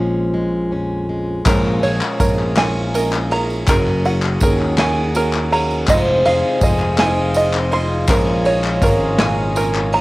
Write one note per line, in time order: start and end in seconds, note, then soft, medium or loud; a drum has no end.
0.00 1.42 A#1 medium
0.00 0.72 A#2 medium
0.00 1.41 F3 medium
0.00 0.33 G#3 soft
0.00 0.71 C#4 medium
0.00 1.42 G#4 medium
0.34 1.08 G#3 soft
0.71 1.45 F2 medium
0.71 1.41 C#4 medium
1.09 3.68 G#3 medium
1.45 3.64 A#1 medium
1.45 1.80 A#1 medium
1.45 2.19 A#2 medium
1.45 3.64 A#2 medium
1.45 1.80 F3 medium
1.45 2.17 F3 medium
1.45 2.20 G#3 medium
1.45 10.01 G#3 medium
1.45 1.80 A#3 medium
1.45 1.80 C#4 medium
1.45 2.20 C#4 loud
1.45 5.85 C#4 medium
1.45 3.66 F4 medium
1.45 1.80 G#4 medium
1.45 2.21 G#4 medium
1.45 2.19 A#4 loud
1.45 5.85 A#4 medium
1.45 1.81 C#5 loud
1.45 kick loud
1.45 clap loud
1.45 crash loud
1.45 tambourine medium
1.65 clap soft
1.82 2.00 A#1 medium
1.82 2.17 F3 medium
1.82 2.17 A#3 medium
1.82 2.17 C#4 medium
1.82 2.17 G#4 medium
1.82 2.17 C#5 medium
1.82 3.31 C#5 medium
1.82 ride medium
1.82 tambourine soft
2.01 clap medium
2.19 3.64 A#1 medium
2.19 2.56 F3 medium
2.19 2.53 F3 medium
2.19 2.56 G#3 medium
2.19 2.53 A#3 medium
2.19 2.54 C#4 medium
2.19 2.56 C#4 medium
2.19 2.54 G#4 medium
2.19 2.55 G#4 medium
2.19 2.94 A#4 medium
2.19 2.54 C#5 loud
2.19 kick medium
2.19 ride medium
2.19 tambourine loud
2.39 clap soft
2.56 3.31 A#2 medium
2.56 2.91 F3 medium
2.56 3.30 F3 medium
2.56 3.31 G#3 medium
2.56 2.91 A#3 medium
2.56 3.30 C#4 medium
2.56 2.91 C#4 medium
2.56 3.30 G#4 medium
2.56 2.91 G#4 medium
2.56 2.91 C#5 medium
2.56 3.68 G#5 loud
2.56 snare loud
2.56 clap medium
2.56 ride medium
2.94 3.28 F3 medium
2.94 3.28 A#3 medium
2.94 3.29 C#4 medium
2.94 3.29 G#4 medium
2.94 3.68 A#4 medium
2.94 3.29 D#5 medium
2.94 ride medium
2.94 tambourine loud
3.13 clap medium
3.30 3.65 F3 medium
3.30 3.66 G#3 soft
3.30 3.65 A#3 medium
3.30 3.66 C#4 medium
3.30 3.65 C#4 medium
3.30 3.67 G#4 medium
3.30 3.65 G#4 medium
3.30 3.65 C#5 loud
3.30 3.68 A#5 medium
3.30 ride medium
3.50 tambourine soft
3.66 4.37 F#1 loud
3.66 5.85 F#1 medium
3.66 5.85 F#2 medium
3.66 4.40 F#3 medium
3.66 4.02 F#3 loud
3.66 4.41 A#3 medium
3.66 4.02 A#3 medium
3.66 4.41 C#4 loud
3.66 4.02 C#4 medium
3.66 4.43 G#4 loud
3.66 4.02 G#4 loud
3.66 4.42 A#4 loud
3.66 4.02 C#5 loud
3.66 kick loud
3.66 clap medium
3.66 ride medium
3.66 tambourine loud
3.70 5.88 F#4 medium
3.86 clap soft
4.04 4.38 F#3 medium
4.04 4.39 A#3 medium
4.04 4.39 C#4 medium
4.04 4.39 G#4 medium
4.04 4.39 C#5 loud
4.04 5.52 F#5 medium
4.04 ride medium
4.04 tambourine soft
4.22 clap medium
4.40 5.85 D#2 medium
4.40 4.78 F#3 medium
4.40 4.76 F#3 medium
4.40 4.77 A#3 medium
4.40 4.76 A#3 medium
4.40 4.76 C#4 medium
4.40 4.77 C#4 medium
4.40 4.76 G#4 medium
4.40 5.15 A#4 medium
4.40 4.76 C#5 medium
4.40 kick medium
4.40 ride medium
4.40 tambourine loud
4.59 clap soft
4.77 5.12 F#3 medium
4.77 5.52 F#3 medium
4.77 5.52 A#3 medium
4.77 5.12 A#3 medium
4.77 5.51 C#4 medium
4.77 5.12 C#4 medium
4.77 5.50 G#4 medium
4.77 5.13 G#4 medium
4.77 5.13 C#5 medium
4.77 5.89 G#5 loud
4.77 snare loud
4.77 clap medium
4.77 ride medium
5.14 5.49 F#3 medium
5.14 5.49 A#3 medium
5.14 5.49 C#4 medium
5.14 5.49 G#4 medium
5.14 5.89 A#4 medium
5.14 5.49 C#5 medium
5.14 ride medium
5.14 tambourine loud
5.33 clap medium
5.51 5.85 F#3 medium
5.51 5.86 A#3 medium
5.51 5.88 A#3 soft
5.51 5.86 C#4 medium
5.51 5.88 C#4 medium
5.51 5.88 G#4 medium
5.51 5.86 G#4 medium
5.51 5.86 C#5 loud
5.51 5.86 F5 medium
5.51 5.89 A#5 medium
5.51 ride medium
5.71 tambourine soft
5.87 6.22 F1 loud
5.87 8.06 F1 medium
5.87 6.62 F2 loud
5.87 8.06 F2 medium
5.87 6.62 C3 loud
5.87 6.59 D#3 medium
5.87 6.23 F3 loud
5.87 6.61 G#3 medium
5.87 6.61 C4 loud
5.87 6.23 C4 medium
5.87 8.07 D#4 medium
5.87 6.23 D#4 medium
5.87 10.01 F4 medium
5.87 6.23 G#4 loud
5.87 6.62 G#4 loud
5.87 8.07 C5 loud
5.87 6.23 C5 loud
5.87 6.62 D#5 loud
5.87 kick loud
5.87 clap medium
5.87 ride medium
5.87 tambourine loud
6.06 clap soft
6.25 6.42 F1 loud
6.25 6.59 F3 medium
6.25 6.60 C4 medium
6.25 6.59 D#4 medium
6.25 6.60 G#4 medium
6.25 6.60 C5 loud
6.25 7.73 F5 medium
6.25 ride medium
6.25 tambourine soft
6.60 8.05 F1 medium
6.60 6.98 D#3 medium
6.60 6.96 F3 medium
6.60 6.98 G#3 medium
6.60 6.98 C4 medium
6.60 6.96 C4 medium
6.60 6.96 D#4 medium
6.60 6.97 G#4 medium
6.60 6.97 C5 loud
6.60 7.36 D#5 medium
6.60 kick medium
6.60 ride medium
6.60 tambourine loud
6.80 clap soft
6.98 7.73 F2 medium
6.98 7.73 C3 medium
6.98 7.72 D#3 medium
6.98 7.32 F3 medium
6.98 7.72 G#3 medium
6.98 7.32 C4 medium
6.98 7.71 C4 medium
6.98 7.33 D#4 medium
6.98 7.71 G#4 medium
6.98 7.33 G#4 medium
6.98 7.33 C5 medium
6.98 8.09 G#5 loud
6.98 snare loud
6.98 clap medium
6.98 ride medium
7.34 7.69 F3 medium
7.34 7.69 C4 medium
7.34 7.69 D#4 medium
7.34 7.69 G#4 medium
7.34 7.69 C5 medium
7.34 8.10 D#5 medium
7.34 ride medium
7.34 tambourine loud
7.53 clap medium
7.71 8.08 D#3 soft
7.71 8.06 F3 medium
7.71 8.07 G#3 medium
7.71 8.06 C4 medium
7.71 8.09 C4 medium
7.71 8.06 D#4 medium
7.71 8.08 G#4 medium
7.71 8.06 G#4 medium
7.71 8.06 C5 loud
7.71 8.09 C6 medium
7.71 ride medium
8.07 10.01 A#1 medium
8.07 8.78 A#1 loud
8.07 8.82 A#2 medium
8.07 10.01 A#2 medium
8.07 8.81 F3 loud
8.07 8.43 F3 loud
8.07 8.82 G#3 medium
8.07 8.43 A#3 medium
8.07 8.43 C#4 medium
8.07 10.01 C#4 medium
8.07 8.82 C#4 medium
8.07 8.83 G#4 loud
8.07 8.43 G#4 medium
8.07 10.01 A#4 loud
8.07 8.82 A#4 loud
8.07 8.43 C#5 loud
8.07 kick loud
8.07 clap loud
8.07 ride medium
8.07 tambourine loud
8.28 clap soft
8.44 8.79 F3 medium
8.44 8.79 A#3 medium
8.44 8.79 C#4 medium
8.44 8.80 G#4 medium
8.44 9.93 C#5 medium
8.44 8.80 D#5 loud
8.44 ride medium
8.44 tambourine soft
8.64 clap medium
8.81 10.01 G#1 loud
8.81 9.16 F3 medium
8.81 9.19 F3 medium
8.81 9.19 G#3 medium
8.81 9.16 A#3 medium
8.81 9.16 C#4 medium
8.81 9.18 C#4 medium
8.81 9.16 G#4 medium
8.81 9.18 G#4 medium
8.81 9.56 A#4 medium
8.81 9.16 C#5 medium
8.81 kick medium
8.81 clap soft
8.81 ride medium
8.81 tambourine medium
9.19 9.93 A#2 medium
9.19 9.53 F3 medium
9.19 9.93 F3 medium
9.19 9.94 G#3 medium
9.19 9.53 A#3 medium
9.19 9.53 C#4 medium
9.19 9.92 C#4 medium
9.19 9.53 G#4 medium
9.19 9.92 G#4 medium
9.19 9.53 C#5 medium
9.19 10.01 G#5 loud
9.19 snare loud
9.19 clap loud
9.19 ride medium
9.55 9.90 F3 medium
9.55 9.90 A#3 medium
9.55 9.90 C#4 medium
9.55 9.90 G#4 medium
9.55 10.01 A#4 medium
9.55 9.90 C#5 medium
9.55 clap soft
9.55 ride medium
9.55 tambourine loud
9.75 clap medium
9.92 10.01 F3 medium
9.92 10.01 G#3 soft
9.92 10.01 A#3 medium
9.92 10.01 C#4 medium
9.92 10.01 G#4 medium
9.92 10.01 C#5 medium
9.92 10.01 A#5 medium
9.92 ride medium